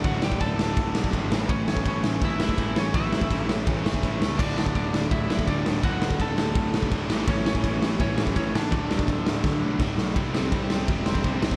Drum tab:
CC |----------------|----------------|----------------|x---------------|
RD |x---x---x---x---|x---x---x---x---|x---x---x---x---|----x---x---x---|
SD |--o---o---o---o-|--o---o---o---o-|--o---o---o---o-|--o---o---o---o-|
BD |o--oo---o--oo---|o--oo---o--oo---|o--oo---o--oo---|o--oo---o--oo---|

CC |----------------|----------------|----------------|----------------|
RD |x---x---x---x---|x---x---x---x---|x---x-----------|x---x---x---x---|
SD |--o---o---o---o-|--o---o---o---o-|--o---o-o---o-o-|--o---o---o---o-|
BD |o--oo---o--oo---|o--oo---o--oo---|o--oo---o---o---|o---o---o--oo--o|